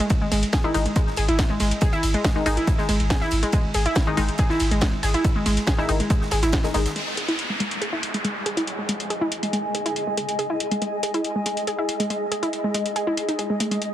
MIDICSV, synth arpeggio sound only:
0, 0, Header, 1, 2, 480
1, 0, Start_track
1, 0, Tempo, 428571
1, 114, Time_signature, 4, 2, 24, 8
1, 15611, End_track
2, 0, Start_track
2, 0, Title_t, "Synth arpeggio sound"
2, 0, Program_c, 0, 84
2, 240, Note_on_c, 0, 56, 79
2, 275, Note_off_c, 0, 56, 0
2, 354, Note_on_c, 0, 56, 79
2, 419, Note_off_c, 0, 56, 0
2, 594, Note_on_c, 0, 68, 87
2, 659, Note_off_c, 0, 68, 0
2, 719, Note_on_c, 0, 64, 104
2, 779, Note_off_c, 0, 64, 0
2, 959, Note_on_c, 0, 56, 77
2, 995, Note_off_c, 0, 56, 0
2, 1073, Note_on_c, 0, 56, 84
2, 1138, Note_off_c, 0, 56, 0
2, 1314, Note_on_c, 0, 68, 75
2, 1379, Note_off_c, 0, 68, 0
2, 1439, Note_on_c, 0, 64, 97
2, 1498, Note_off_c, 0, 64, 0
2, 1679, Note_on_c, 0, 56, 76
2, 1715, Note_off_c, 0, 56, 0
2, 1794, Note_on_c, 0, 56, 78
2, 1859, Note_off_c, 0, 56, 0
2, 2033, Note_on_c, 0, 68, 85
2, 2098, Note_off_c, 0, 68, 0
2, 2159, Note_on_c, 0, 64, 98
2, 2218, Note_off_c, 0, 64, 0
2, 2399, Note_on_c, 0, 56, 79
2, 2435, Note_off_c, 0, 56, 0
2, 2514, Note_on_c, 0, 56, 86
2, 2579, Note_off_c, 0, 56, 0
2, 2753, Note_on_c, 0, 68, 82
2, 2818, Note_off_c, 0, 68, 0
2, 2879, Note_on_c, 0, 64, 104
2, 2938, Note_off_c, 0, 64, 0
2, 3119, Note_on_c, 0, 56, 80
2, 3155, Note_off_c, 0, 56, 0
2, 3234, Note_on_c, 0, 56, 78
2, 3299, Note_off_c, 0, 56, 0
2, 3475, Note_on_c, 0, 68, 80
2, 3539, Note_off_c, 0, 68, 0
2, 3600, Note_on_c, 0, 64, 104
2, 3659, Note_off_c, 0, 64, 0
2, 3840, Note_on_c, 0, 56, 82
2, 3875, Note_off_c, 0, 56, 0
2, 3955, Note_on_c, 0, 56, 87
2, 4019, Note_off_c, 0, 56, 0
2, 4195, Note_on_c, 0, 68, 79
2, 4259, Note_off_c, 0, 68, 0
2, 4320, Note_on_c, 0, 64, 101
2, 4379, Note_off_c, 0, 64, 0
2, 4560, Note_on_c, 0, 56, 79
2, 4595, Note_off_c, 0, 56, 0
2, 4674, Note_on_c, 0, 56, 78
2, 4739, Note_off_c, 0, 56, 0
2, 4914, Note_on_c, 0, 68, 88
2, 4979, Note_off_c, 0, 68, 0
2, 5039, Note_on_c, 0, 64, 109
2, 5098, Note_off_c, 0, 64, 0
2, 5279, Note_on_c, 0, 56, 73
2, 5315, Note_off_c, 0, 56, 0
2, 5394, Note_on_c, 0, 56, 83
2, 5459, Note_off_c, 0, 56, 0
2, 5635, Note_on_c, 0, 68, 80
2, 5699, Note_off_c, 0, 68, 0
2, 5760, Note_on_c, 0, 64, 105
2, 5819, Note_off_c, 0, 64, 0
2, 5999, Note_on_c, 0, 56, 75
2, 6035, Note_off_c, 0, 56, 0
2, 6114, Note_on_c, 0, 56, 78
2, 6179, Note_off_c, 0, 56, 0
2, 6354, Note_on_c, 0, 68, 87
2, 6419, Note_off_c, 0, 68, 0
2, 6478, Note_on_c, 0, 64, 103
2, 6538, Note_off_c, 0, 64, 0
2, 6719, Note_on_c, 0, 56, 75
2, 6755, Note_off_c, 0, 56, 0
2, 6834, Note_on_c, 0, 56, 82
2, 6899, Note_off_c, 0, 56, 0
2, 7074, Note_on_c, 0, 68, 76
2, 7139, Note_off_c, 0, 68, 0
2, 7199, Note_on_c, 0, 64, 97
2, 7259, Note_off_c, 0, 64, 0
2, 7440, Note_on_c, 0, 56, 78
2, 7475, Note_off_c, 0, 56, 0
2, 7555, Note_on_c, 0, 56, 78
2, 7619, Note_off_c, 0, 56, 0
2, 7794, Note_on_c, 0, 56, 80
2, 7859, Note_off_c, 0, 56, 0
2, 8034, Note_on_c, 0, 68, 75
2, 8099, Note_off_c, 0, 68, 0
2, 8159, Note_on_c, 0, 64, 100
2, 8218, Note_off_c, 0, 64, 0
2, 8398, Note_on_c, 0, 56, 74
2, 8434, Note_off_c, 0, 56, 0
2, 8514, Note_on_c, 0, 56, 77
2, 8579, Note_off_c, 0, 56, 0
2, 8754, Note_on_c, 0, 68, 82
2, 8819, Note_off_c, 0, 68, 0
2, 8879, Note_on_c, 0, 64, 99
2, 8939, Note_off_c, 0, 64, 0
2, 9119, Note_on_c, 0, 56, 72
2, 9155, Note_off_c, 0, 56, 0
2, 9234, Note_on_c, 0, 56, 80
2, 9299, Note_off_c, 0, 56, 0
2, 9475, Note_on_c, 0, 68, 76
2, 9539, Note_off_c, 0, 68, 0
2, 9600, Note_on_c, 0, 64, 100
2, 9659, Note_off_c, 0, 64, 0
2, 9840, Note_on_c, 0, 56, 72
2, 9875, Note_off_c, 0, 56, 0
2, 9955, Note_on_c, 0, 56, 74
2, 10019, Note_off_c, 0, 56, 0
2, 10195, Note_on_c, 0, 68, 84
2, 10259, Note_off_c, 0, 68, 0
2, 10319, Note_on_c, 0, 64, 99
2, 10379, Note_off_c, 0, 64, 0
2, 10560, Note_on_c, 0, 56, 74
2, 10595, Note_off_c, 0, 56, 0
2, 10674, Note_on_c, 0, 56, 80
2, 10739, Note_off_c, 0, 56, 0
2, 10915, Note_on_c, 0, 68, 74
2, 10979, Note_off_c, 0, 68, 0
2, 11040, Note_on_c, 0, 64, 98
2, 11099, Note_off_c, 0, 64, 0
2, 11280, Note_on_c, 0, 56, 74
2, 11315, Note_off_c, 0, 56, 0
2, 11395, Note_on_c, 0, 56, 76
2, 11459, Note_off_c, 0, 56, 0
2, 11635, Note_on_c, 0, 68, 81
2, 11699, Note_off_c, 0, 68, 0
2, 11760, Note_on_c, 0, 64, 98
2, 11819, Note_off_c, 0, 64, 0
2, 12000, Note_on_c, 0, 56, 74
2, 12035, Note_off_c, 0, 56, 0
2, 12115, Note_on_c, 0, 56, 85
2, 12179, Note_off_c, 0, 56, 0
2, 12355, Note_on_c, 0, 68, 77
2, 12419, Note_off_c, 0, 68, 0
2, 12480, Note_on_c, 0, 64, 101
2, 12539, Note_off_c, 0, 64, 0
2, 12719, Note_on_c, 0, 56, 76
2, 12755, Note_off_c, 0, 56, 0
2, 12834, Note_on_c, 0, 56, 75
2, 12899, Note_off_c, 0, 56, 0
2, 13074, Note_on_c, 0, 68, 78
2, 13139, Note_off_c, 0, 68, 0
2, 13199, Note_on_c, 0, 64, 99
2, 13258, Note_off_c, 0, 64, 0
2, 13438, Note_on_c, 0, 56, 79
2, 13475, Note_off_c, 0, 56, 0
2, 13553, Note_on_c, 0, 56, 80
2, 13618, Note_off_c, 0, 56, 0
2, 13793, Note_on_c, 0, 68, 77
2, 13858, Note_off_c, 0, 68, 0
2, 13918, Note_on_c, 0, 64, 100
2, 13978, Note_off_c, 0, 64, 0
2, 14159, Note_on_c, 0, 56, 77
2, 14195, Note_off_c, 0, 56, 0
2, 14274, Note_on_c, 0, 56, 77
2, 14339, Note_off_c, 0, 56, 0
2, 14514, Note_on_c, 0, 68, 82
2, 14579, Note_off_c, 0, 68, 0
2, 14640, Note_on_c, 0, 64, 100
2, 14699, Note_off_c, 0, 64, 0
2, 14879, Note_on_c, 0, 63, 73
2, 14939, Note_off_c, 0, 63, 0
2, 14994, Note_on_c, 0, 56, 78
2, 15091, Note_off_c, 0, 56, 0
2, 15119, Note_on_c, 0, 56, 76
2, 15179, Note_off_c, 0, 56, 0
2, 15234, Note_on_c, 0, 57, 76
2, 15273, Note_off_c, 0, 57, 0
2, 15360, Note_on_c, 0, 56, 78
2, 15419, Note_off_c, 0, 56, 0
2, 15611, End_track
0, 0, End_of_file